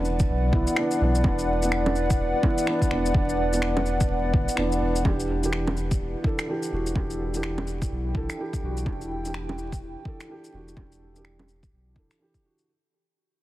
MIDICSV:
0, 0, Header, 1, 5, 480
1, 0, Start_track
1, 0, Key_signature, 1, "minor"
1, 0, Tempo, 476190
1, 1252, Time_signature, 4, 2, 24, 8
1, 13535, End_track
2, 0, Start_track
2, 0, Title_t, "Analog synth pad"
2, 0, Program_c, 0, 89
2, 0, Note_on_c, 0, 71, 79
2, 0, Note_on_c, 0, 74, 102
2, 0, Note_on_c, 0, 78, 96
2, 5092, Note_on_c, 0, 64, 88
2, 7007, Note_on_c, 0, 79, 88
2, 12769, Note_off_c, 0, 74, 0
2, 12769, Note_off_c, 0, 78, 0
2, 12770, Note_off_c, 0, 71, 0
2, 12772, Note_off_c, 0, 64, 0
2, 12772, Note_off_c, 0, 79, 0
2, 13535, End_track
3, 0, Start_track
3, 0, Title_t, "Felt piano"
3, 0, Program_c, 1, 0
3, 0, Control_c, 1, 64, 127
3, 0, Note_on_c, 1, 52, 78
3, 0, Note_on_c, 1, 59, 75
3, 0, Note_on_c, 1, 62, 89
3, 0, Note_on_c, 1, 64, 95
3, 514, Note_off_c, 1, 52, 0
3, 514, Note_on_c, 1, 52, 88
3, 533, Note_off_c, 1, 59, 0
3, 533, Note_on_c, 1, 59, 79
3, 553, Note_off_c, 1, 64, 0
3, 553, Note_on_c, 1, 64, 93
3, 740, Note_off_c, 1, 52, 0
3, 751, Note_off_c, 1, 59, 0
3, 755, Note_on_c, 1, 52, 91
3, 761, Note_off_c, 1, 64, 0
3, 776, Note_on_c, 1, 59, 88
3, 798, Note_off_c, 1, 62, 0
3, 798, Note_on_c, 1, 62, 107
3, 982, Note_off_c, 1, 52, 0
3, 992, Note_off_c, 1, 59, 0
3, 999, Note_on_c, 1, 52, 77
3, 1003, Note_off_c, 1, 62, 0
3, 1020, Note_on_c, 1, 59, 70
3, 1040, Note_on_c, 1, 62, 88
3, 1222, Note_off_c, 1, 52, 0
3, 1234, Note_off_c, 1, 59, 0
3, 1237, Note_on_c, 1, 52, 80
3, 1244, Note_off_c, 1, 62, 0
3, 1257, Note_on_c, 1, 59, 76
3, 1276, Note_on_c, 1, 62, 95
3, 1598, Note_off_c, 1, 52, 0
3, 1608, Note_off_c, 1, 59, 0
3, 1617, Note_off_c, 1, 62, 0
3, 1630, Note_on_c, 1, 52, 81
3, 1649, Note_on_c, 1, 59, 75
3, 1670, Note_on_c, 1, 62, 87
3, 1845, Note_off_c, 1, 52, 0
3, 1855, Note_off_c, 1, 59, 0
3, 1865, Note_off_c, 1, 62, 0
3, 2434, Note_on_c, 1, 52, 87
3, 2455, Note_on_c, 1, 59, 80
3, 2474, Note_on_c, 1, 64, 94
3, 2658, Note_off_c, 1, 52, 0
3, 2672, Note_off_c, 1, 59, 0
3, 2673, Note_on_c, 1, 52, 98
3, 2681, Note_off_c, 1, 64, 0
3, 2694, Note_on_c, 1, 59, 89
3, 2714, Note_on_c, 1, 62, 106
3, 2901, Note_off_c, 1, 52, 0
3, 2911, Note_off_c, 1, 59, 0
3, 2919, Note_on_c, 1, 52, 79
3, 2921, Note_off_c, 1, 62, 0
3, 2938, Note_on_c, 1, 59, 75
3, 2959, Note_on_c, 1, 62, 87
3, 3143, Note_off_c, 1, 52, 0
3, 3153, Note_off_c, 1, 59, 0
3, 3158, Note_on_c, 1, 52, 80
3, 3163, Note_off_c, 1, 62, 0
3, 3176, Note_on_c, 1, 59, 73
3, 3195, Note_on_c, 1, 62, 87
3, 3518, Note_off_c, 1, 52, 0
3, 3527, Note_off_c, 1, 59, 0
3, 3537, Note_off_c, 1, 62, 0
3, 3542, Note_on_c, 1, 52, 79
3, 3561, Note_on_c, 1, 59, 75
3, 3582, Note_on_c, 1, 62, 88
3, 3761, Note_off_c, 1, 52, 0
3, 3771, Note_off_c, 1, 59, 0
3, 3781, Note_off_c, 1, 62, 0
3, 4589, Note_on_c, 1, 52, 89
3, 4606, Note_on_c, 1, 59, 84
3, 4631, Note_on_c, 1, 62, 101
3, 5057, Note_off_c, 1, 52, 0
3, 5067, Note_off_c, 1, 59, 0
3, 5072, Note_on_c, 1, 52, 77
3, 5077, Note_off_c, 1, 62, 0
3, 5092, Note_on_c, 1, 62, 72
3, 5106, Control_c, 1, 64, 0
3, 5112, Note_on_c, 1, 67, 85
3, 5270, Control_c, 1, 64, 127
3, 5435, Note_off_c, 1, 52, 0
3, 5445, Note_off_c, 1, 62, 0
3, 5455, Note_off_c, 1, 67, 0
3, 5460, Note_on_c, 1, 52, 77
3, 5480, Note_on_c, 1, 62, 70
3, 5497, Note_on_c, 1, 67, 85
3, 5681, Note_off_c, 1, 52, 0
3, 5690, Note_off_c, 1, 62, 0
3, 5699, Note_off_c, 1, 67, 0
3, 6274, Note_on_c, 1, 52, 79
3, 6295, Note_on_c, 1, 62, 76
3, 6312, Note_on_c, 1, 69, 93
3, 6500, Note_off_c, 1, 52, 0
3, 6511, Note_off_c, 1, 62, 0
3, 6515, Note_on_c, 1, 52, 90
3, 6520, Note_off_c, 1, 69, 0
3, 6536, Note_on_c, 1, 62, 80
3, 6556, Note_on_c, 1, 67, 91
3, 6740, Note_off_c, 1, 52, 0
3, 6752, Note_off_c, 1, 62, 0
3, 6755, Note_on_c, 1, 52, 72
3, 6762, Note_off_c, 1, 67, 0
3, 6777, Note_on_c, 1, 62, 65
3, 6795, Note_on_c, 1, 66, 78
3, 6979, Note_off_c, 1, 52, 0
3, 6993, Note_off_c, 1, 62, 0
3, 6995, Note_on_c, 1, 52, 78
3, 7001, Note_off_c, 1, 66, 0
3, 7014, Note_on_c, 1, 62, 68
3, 7035, Note_on_c, 1, 67, 83
3, 7356, Note_off_c, 1, 52, 0
3, 7366, Note_off_c, 1, 62, 0
3, 7376, Note_off_c, 1, 67, 0
3, 7388, Note_on_c, 1, 52, 73
3, 7408, Note_on_c, 1, 62, 66
3, 7427, Note_on_c, 1, 67, 82
3, 7604, Note_off_c, 1, 52, 0
3, 7614, Note_off_c, 1, 62, 0
3, 7624, Note_off_c, 1, 67, 0
3, 8198, Note_on_c, 1, 52, 81
3, 8218, Note_on_c, 1, 62, 74
3, 8237, Note_on_c, 1, 69, 93
3, 8419, Note_off_c, 1, 52, 0
3, 8433, Note_off_c, 1, 62, 0
3, 8434, Note_on_c, 1, 52, 89
3, 8442, Note_off_c, 1, 69, 0
3, 8455, Note_on_c, 1, 62, 74
3, 8473, Note_on_c, 1, 67, 94
3, 8660, Note_off_c, 1, 52, 0
3, 8671, Note_off_c, 1, 62, 0
3, 8675, Note_on_c, 1, 52, 69
3, 8681, Note_off_c, 1, 67, 0
3, 8694, Note_on_c, 1, 62, 65
3, 8715, Note_on_c, 1, 66, 80
3, 8895, Note_off_c, 1, 52, 0
3, 8910, Note_on_c, 1, 52, 73
3, 8911, Note_off_c, 1, 62, 0
3, 8922, Note_off_c, 1, 66, 0
3, 8930, Note_on_c, 1, 62, 68
3, 8953, Note_on_c, 1, 67, 82
3, 9274, Note_off_c, 1, 52, 0
3, 9284, Note_off_c, 1, 62, 0
3, 9296, Note_off_c, 1, 67, 0
3, 9307, Note_on_c, 1, 52, 75
3, 9326, Note_on_c, 1, 62, 69
3, 9344, Note_on_c, 1, 67, 80
3, 9524, Note_off_c, 1, 52, 0
3, 9533, Note_off_c, 1, 62, 0
3, 9543, Note_off_c, 1, 67, 0
3, 10114, Note_on_c, 1, 52, 77
3, 10134, Note_on_c, 1, 62, 70
3, 10154, Note_on_c, 1, 69, 88
3, 10340, Note_off_c, 1, 52, 0
3, 10351, Note_off_c, 1, 62, 0
3, 10355, Note_on_c, 1, 52, 82
3, 10361, Note_off_c, 1, 69, 0
3, 10375, Note_on_c, 1, 62, 77
3, 10396, Note_on_c, 1, 67, 93
3, 10577, Note_off_c, 1, 52, 0
3, 10592, Note_off_c, 1, 62, 0
3, 10592, Note_on_c, 1, 52, 66
3, 10602, Note_off_c, 1, 67, 0
3, 10614, Note_on_c, 1, 62, 63
3, 10634, Note_on_c, 1, 66, 75
3, 10820, Note_off_c, 1, 52, 0
3, 10831, Note_off_c, 1, 62, 0
3, 10840, Note_on_c, 1, 52, 72
3, 10841, Note_off_c, 1, 66, 0
3, 10857, Note_on_c, 1, 62, 64
3, 10878, Note_on_c, 1, 67, 78
3, 11199, Note_off_c, 1, 52, 0
3, 11208, Note_off_c, 1, 62, 0
3, 11218, Note_off_c, 1, 67, 0
3, 11226, Note_on_c, 1, 52, 70
3, 11247, Note_on_c, 1, 62, 66
3, 11267, Note_on_c, 1, 67, 76
3, 11443, Note_off_c, 1, 52, 0
3, 11454, Note_off_c, 1, 62, 0
3, 11464, Note_off_c, 1, 67, 0
3, 12038, Note_on_c, 1, 52, 77
3, 12058, Note_on_c, 1, 62, 66
3, 12079, Note_on_c, 1, 69, 83
3, 12263, Note_off_c, 1, 52, 0
3, 12273, Note_off_c, 1, 62, 0
3, 12280, Note_on_c, 1, 52, 81
3, 12284, Note_off_c, 1, 69, 0
3, 12299, Note_on_c, 1, 62, 76
3, 12320, Note_on_c, 1, 67, 84
3, 12499, Note_off_c, 1, 52, 0
3, 12513, Note_off_c, 1, 62, 0
3, 12514, Note_on_c, 1, 52, 68
3, 12524, Note_off_c, 1, 67, 0
3, 12536, Note_on_c, 1, 62, 60
3, 12557, Note_on_c, 1, 66, 71
3, 12741, Note_off_c, 1, 52, 0
3, 12752, Note_off_c, 1, 62, 0
3, 12763, Note_off_c, 1, 66, 0
3, 12785, Control_c, 1, 64, 0
3, 13535, End_track
4, 0, Start_track
4, 0, Title_t, "Sub bass"
4, 0, Program_c, 2, 38
4, 0, Note_on_c, 2, 28, 103
4, 279, Note_off_c, 2, 28, 0
4, 294, Note_on_c, 2, 35, 96
4, 518, Note_off_c, 2, 35, 0
4, 532, Note_on_c, 2, 35, 91
4, 669, Note_off_c, 2, 35, 0
4, 1017, Note_on_c, 2, 35, 97
4, 1240, Note_off_c, 2, 35, 0
4, 1254, Note_on_c, 2, 28, 96
4, 2201, Note_off_c, 2, 28, 0
4, 2214, Note_on_c, 2, 28, 108
4, 2350, Note_off_c, 2, 28, 0
4, 2934, Note_on_c, 2, 28, 83
4, 3158, Note_off_c, 2, 28, 0
4, 3171, Note_on_c, 2, 28, 99
4, 4120, Note_off_c, 2, 28, 0
4, 4130, Note_on_c, 2, 28, 99
4, 4370, Note_on_c, 2, 33, 86
4, 4386, Note_off_c, 2, 28, 0
4, 4508, Note_off_c, 2, 33, 0
4, 4609, Note_on_c, 2, 28, 96
4, 4836, Note_off_c, 2, 28, 0
4, 4850, Note_on_c, 2, 28, 97
4, 5076, Note_off_c, 2, 28, 0
4, 5091, Note_on_c, 2, 28, 102
4, 6040, Note_off_c, 2, 28, 0
4, 6057, Note_on_c, 2, 28, 100
4, 6191, Note_off_c, 2, 28, 0
4, 6776, Note_on_c, 2, 28, 81
4, 6999, Note_off_c, 2, 28, 0
4, 7012, Note_on_c, 2, 28, 95
4, 7960, Note_off_c, 2, 28, 0
4, 7978, Note_on_c, 2, 35, 94
4, 8200, Note_off_c, 2, 35, 0
4, 8214, Note_on_c, 2, 35, 94
4, 8350, Note_off_c, 2, 35, 0
4, 8695, Note_on_c, 2, 35, 89
4, 8919, Note_off_c, 2, 35, 0
4, 8934, Note_on_c, 2, 28, 89
4, 9881, Note_off_c, 2, 28, 0
4, 9897, Note_on_c, 2, 28, 100
4, 10031, Note_off_c, 2, 28, 0
4, 10619, Note_on_c, 2, 28, 79
4, 10841, Note_off_c, 2, 28, 0
4, 10854, Note_on_c, 2, 28, 92
4, 11801, Note_off_c, 2, 28, 0
4, 11817, Note_on_c, 2, 35, 90
4, 12055, Note_on_c, 2, 26, 78
4, 12070, Note_off_c, 2, 35, 0
4, 12190, Note_off_c, 2, 26, 0
4, 13535, End_track
5, 0, Start_track
5, 0, Title_t, "Drums"
5, 50, Note_on_c, 9, 82, 30
5, 151, Note_off_c, 9, 82, 0
5, 196, Note_on_c, 9, 82, 56
5, 200, Note_on_c, 9, 36, 102
5, 297, Note_off_c, 9, 82, 0
5, 301, Note_off_c, 9, 36, 0
5, 532, Note_on_c, 9, 36, 104
5, 633, Note_off_c, 9, 36, 0
5, 678, Note_on_c, 9, 82, 54
5, 770, Note_on_c, 9, 26, 104
5, 779, Note_off_c, 9, 82, 0
5, 871, Note_off_c, 9, 26, 0
5, 918, Note_on_c, 9, 82, 43
5, 1019, Note_off_c, 9, 82, 0
5, 1160, Note_on_c, 9, 82, 57
5, 1250, Note_on_c, 9, 61, 40
5, 1253, Note_on_c, 9, 36, 112
5, 1261, Note_off_c, 9, 82, 0
5, 1351, Note_off_c, 9, 61, 0
5, 1354, Note_off_c, 9, 36, 0
5, 1399, Note_on_c, 9, 82, 32
5, 1499, Note_off_c, 9, 82, 0
5, 1637, Note_on_c, 9, 82, 59
5, 1732, Note_on_c, 9, 26, 108
5, 1738, Note_off_c, 9, 82, 0
5, 1833, Note_off_c, 9, 26, 0
5, 1878, Note_on_c, 9, 61, 58
5, 1970, Note_on_c, 9, 82, 32
5, 1978, Note_off_c, 9, 61, 0
5, 2071, Note_off_c, 9, 82, 0
5, 2119, Note_on_c, 9, 82, 59
5, 2120, Note_on_c, 9, 36, 107
5, 2220, Note_off_c, 9, 82, 0
5, 2221, Note_off_c, 9, 36, 0
5, 2451, Note_on_c, 9, 36, 101
5, 2452, Note_on_c, 9, 61, 39
5, 2552, Note_off_c, 9, 36, 0
5, 2552, Note_off_c, 9, 61, 0
5, 2600, Note_on_c, 9, 82, 56
5, 2693, Note_on_c, 9, 26, 101
5, 2701, Note_off_c, 9, 82, 0
5, 2793, Note_off_c, 9, 26, 0
5, 2839, Note_on_c, 9, 36, 59
5, 2844, Note_on_c, 9, 82, 43
5, 2933, Note_on_c, 9, 26, 60
5, 2940, Note_off_c, 9, 36, 0
5, 2945, Note_off_c, 9, 82, 0
5, 3034, Note_off_c, 9, 26, 0
5, 3082, Note_on_c, 9, 82, 57
5, 3170, Note_on_c, 9, 36, 124
5, 3183, Note_off_c, 9, 82, 0
5, 3270, Note_off_c, 9, 36, 0
5, 3319, Note_on_c, 9, 82, 35
5, 3420, Note_off_c, 9, 82, 0
5, 3560, Note_on_c, 9, 82, 59
5, 3649, Note_on_c, 9, 26, 100
5, 3661, Note_off_c, 9, 82, 0
5, 3749, Note_off_c, 9, 26, 0
5, 3797, Note_on_c, 9, 61, 58
5, 3888, Note_on_c, 9, 82, 33
5, 3898, Note_off_c, 9, 61, 0
5, 3989, Note_off_c, 9, 82, 0
5, 4038, Note_on_c, 9, 36, 102
5, 4038, Note_on_c, 9, 82, 57
5, 4139, Note_off_c, 9, 36, 0
5, 4139, Note_off_c, 9, 82, 0
5, 4370, Note_on_c, 9, 36, 105
5, 4471, Note_off_c, 9, 36, 0
5, 4521, Note_on_c, 9, 82, 58
5, 4607, Note_on_c, 9, 26, 107
5, 4621, Note_off_c, 9, 82, 0
5, 4708, Note_off_c, 9, 26, 0
5, 4758, Note_on_c, 9, 82, 46
5, 4859, Note_off_c, 9, 82, 0
5, 4998, Note_on_c, 9, 82, 57
5, 5091, Note_on_c, 9, 36, 112
5, 5091, Note_on_c, 9, 61, 40
5, 5099, Note_off_c, 9, 82, 0
5, 5192, Note_off_c, 9, 36, 0
5, 5192, Note_off_c, 9, 61, 0
5, 5240, Note_on_c, 9, 82, 34
5, 5341, Note_off_c, 9, 82, 0
5, 5479, Note_on_c, 9, 82, 55
5, 5570, Note_on_c, 9, 26, 98
5, 5579, Note_off_c, 9, 82, 0
5, 5671, Note_off_c, 9, 26, 0
5, 5720, Note_on_c, 9, 61, 55
5, 5814, Note_on_c, 9, 82, 30
5, 5821, Note_off_c, 9, 61, 0
5, 5914, Note_off_c, 9, 82, 0
5, 5960, Note_on_c, 9, 36, 101
5, 5961, Note_on_c, 9, 82, 55
5, 6060, Note_off_c, 9, 36, 0
5, 6062, Note_off_c, 9, 82, 0
5, 6292, Note_on_c, 9, 36, 100
5, 6393, Note_off_c, 9, 36, 0
5, 6439, Note_on_c, 9, 26, 100
5, 6439, Note_on_c, 9, 82, 55
5, 6540, Note_off_c, 9, 26, 0
5, 6540, Note_off_c, 9, 82, 0
5, 6680, Note_on_c, 9, 82, 46
5, 6781, Note_off_c, 9, 82, 0
5, 6921, Note_on_c, 9, 82, 57
5, 7011, Note_on_c, 9, 36, 120
5, 7012, Note_on_c, 9, 61, 38
5, 7022, Note_off_c, 9, 82, 0
5, 7112, Note_off_c, 9, 36, 0
5, 7113, Note_off_c, 9, 61, 0
5, 7161, Note_on_c, 9, 82, 33
5, 7261, Note_off_c, 9, 82, 0
5, 7400, Note_on_c, 9, 82, 55
5, 7491, Note_on_c, 9, 26, 102
5, 7501, Note_off_c, 9, 82, 0
5, 7592, Note_off_c, 9, 26, 0
5, 7641, Note_on_c, 9, 61, 51
5, 7733, Note_on_c, 9, 82, 31
5, 7741, Note_off_c, 9, 61, 0
5, 7834, Note_off_c, 9, 82, 0
5, 7880, Note_on_c, 9, 36, 101
5, 7883, Note_on_c, 9, 82, 54
5, 7981, Note_off_c, 9, 36, 0
5, 7984, Note_off_c, 9, 82, 0
5, 8212, Note_on_c, 9, 36, 102
5, 8313, Note_off_c, 9, 36, 0
5, 8363, Note_on_c, 9, 26, 104
5, 8363, Note_on_c, 9, 82, 53
5, 8464, Note_off_c, 9, 26, 0
5, 8464, Note_off_c, 9, 82, 0
5, 8601, Note_on_c, 9, 36, 64
5, 8604, Note_on_c, 9, 82, 43
5, 8702, Note_off_c, 9, 36, 0
5, 8705, Note_off_c, 9, 82, 0
5, 8843, Note_on_c, 9, 82, 54
5, 8932, Note_on_c, 9, 36, 118
5, 8937, Note_on_c, 9, 61, 34
5, 8944, Note_off_c, 9, 82, 0
5, 9033, Note_off_c, 9, 36, 0
5, 9037, Note_off_c, 9, 61, 0
5, 9085, Note_on_c, 9, 82, 30
5, 9185, Note_off_c, 9, 82, 0
5, 9326, Note_on_c, 9, 82, 54
5, 9417, Note_on_c, 9, 26, 99
5, 9427, Note_off_c, 9, 82, 0
5, 9518, Note_off_c, 9, 26, 0
5, 9568, Note_on_c, 9, 61, 48
5, 9659, Note_on_c, 9, 82, 31
5, 9669, Note_off_c, 9, 61, 0
5, 9760, Note_off_c, 9, 82, 0
5, 9801, Note_on_c, 9, 36, 95
5, 9807, Note_on_c, 9, 82, 51
5, 9902, Note_off_c, 9, 36, 0
5, 9907, Note_off_c, 9, 82, 0
5, 10133, Note_on_c, 9, 36, 100
5, 10234, Note_off_c, 9, 36, 0
5, 10287, Note_on_c, 9, 26, 98
5, 10287, Note_on_c, 9, 82, 50
5, 10387, Note_off_c, 9, 26, 0
5, 10387, Note_off_c, 9, 82, 0
5, 10527, Note_on_c, 9, 82, 42
5, 10628, Note_off_c, 9, 82, 0
5, 10768, Note_on_c, 9, 82, 53
5, 10854, Note_on_c, 9, 36, 114
5, 10859, Note_on_c, 9, 61, 32
5, 10869, Note_off_c, 9, 82, 0
5, 10955, Note_off_c, 9, 36, 0
5, 10960, Note_off_c, 9, 61, 0
5, 11008, Note_on_c, 9, 82, 29
5, 11109, Note_off_c, 9, 82, 0
5, 11247, Note_on_c, 9, 82, 53
5, 11337, Note_on_c, 9, 26, 98
5, 11348, Note_off_c, 9, 82, 0
5, 11438, Note_off_c, 9, 26, 0
5, 11485, Note_on_c, 9, 61, 47
5, 11576, Note_on_c, 9, 82, 28
5, 11586, Note_off_c, 9, 61, 0
5, 11677, Note_off_c, 9, 82, 0
5, 11723, Note_on_c, 9, 36, 94
5, 11725, Note_on_c, 9, 82, 50
5, 11823, Note_off_c, 9, 36, 0
5, 11826, Note_off_c, 9, 82, 0
5, 12054, Note_on_c, 9, 36, 93
5, 12155, Note_off_c, 9, 36, 0
5, 12206, Note_on_c, 9, 26, 98
5, 12206, Note_on_c, 9, 82, 49
5, 12307, Note_off_c, 9, 26, 0
5, 12307, Note_off_c, 9, 82, 0
5, 12442, Note_on_c, 9, 36, 58
5, 12444, Note_on_c, 9, 82, 38
5, 12543, Note_off_c, 9, 36, 0
5, 12545, Note_off_c, 9, 82, 0
5, 12685, Note_on_c, 9, 82, 47
5, 12786, Note_off_c, 9, 82, 0
5, 13535, End_track
0, 0, End_of_file